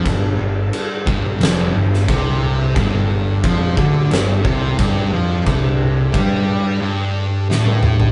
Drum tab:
CC |x---x---x---x---|x---x---x---x---|x---x-----------|
SD |--------o--o----|--------o-------|------------o---|
T1 |----------------|----------------|-------------o--|
T2 |----------------|----------------|--------------o-|
FT |----------------|----------------|---------------o|
BD |o-----o-----o---|o---o-o---o-o---|o---o-----------|